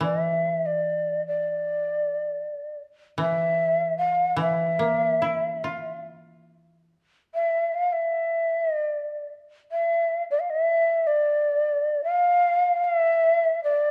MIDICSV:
0, 0, Header, 1, 3, 480
1, 0, Start_track
1, 0, Tempo, 817439
1, 11, Time_signature, 2, 2, 24, 8
1, 970, Tempo, 773196
1, 1930, Tempo, 800000
1, 2890, Tempo, 851064
1, 4330, Tempo, 792602
1, 5290, Tempo, 771208
1, 6730, Tempo, 820793
1, 7690, Tempo, 780234
1, 8316, End_track
2, 0, Start_track
2, 0, Title_t, "Shakuhachi"
2, 0, Program_c, 0, 77
2, 23, Note_on_c, 0, 74, 69
2, 122, Note_off_c, 0, 74, 0
2, 122, Note_on_c, 0, 76, 69
2, 386, Note_on_c, 0, 74, 66
2, 395, Note_off_c, 0, 76, 0
2, 741, Note_off_c, 0, 74, 0
2, 749, Note_on_c, 0, 74, 66
2, 1674, Note_off_c, 0, 74, 0
2, 1933, Note_on_c, 0, 76, 85
2, 2381, Note_off_c, 0, 76, 0
2, 2397, Note_on_c, 0, 77, 78
2, 2625, Note_off_c, 0, 77, 0
2, 2657, Note_on_c, 0, 76, 80
2, 3592, Note_off_c, 0, 76, 0
2, 4326, Note_on_c, 0, 76, 78
2, 4567, Note_on_c, 0, 77, 79
2, 4576, Note_off_c, 0, 76, 0
2, 4677, Note_on_c, 0, 76, 77
2, 4686, Note_off_c, 0, 77, 0
2, 5107, Note_off_c, 0, 76, 0
2, 5107, Note_on_c, 0, 75, 77
2, 5216, Note_off_c, 0, 75, 0
2, 5216, Note_on_c, 0, 74, 77
2, 5521, Note_off_c, 0, 74, 0
2, 5776, Note_on_c, 0, 76, 86
2, 6101, Note_off_c, 0, 76, 0
2, 6142, Note_on_c, 0, 74, 77
2, 6198, Note_on_c, 0, 77, 62
2, 6208, Note_off_c, 0, 74, 0
2, 6262, Note_on_c, 0, 75, 89
2, 6272, Note_off_c, 0, 77, 0
2, 6331, Note_off_c, 0, 75, 0
2, 6331, Note_on_c, 0, 76, 89
2, 6617, Note_on_c, 0, 74, 77
2, 6626, Note_off_c, 0, 76, 0
2, 7186, Note_off_c, 0, 74, 0
2, 7189, Note_on_c, 0, 77, 100
2, 7659, Note_off_c, 0, 77, 0
2, 7659, Note_on_c, 0, 77, 92
2, 7725, Note_off_c, 0, 77, 0
2, 7725, Note_on_c, 0, 76, 92
2, 8144, Note_off_c, 0, 76, 0
2, 8148, Note_on_c, 0, 74, 85
2, 8316, Note_off_c, 0, 74, 0
2, 8316, End_track
3, 0, Start_track
3, 0, Title_t, "Koto"
3, 0, Program_c, 1, 107
3, 3, Note_on_c, 1, 52, 42
3, 1450, Note_off_c, 1, 52, 0
3, 1917, Note_on_c, 1, 52, 48
3, 2623, Note_off_c, 1, 52, 0
3, 2630, Note_on_c, 1, 52, 49
3, 2886, Note_on_c, 1, 58, 34
3, 3127, Note_on_c, 1, 64, 32
3, 3365, Note_on_c, 1, 65, 29
3, 3852, Note_off_c, 1, 58, 0
3, 4089, Note_off_c, 1, 52, 0
3, 4097, Note_off_c, 1, 64, 0
3, 4330, Note_off_c, 1, 65, 0
3, 8316, End_track
0, 0, End_of_file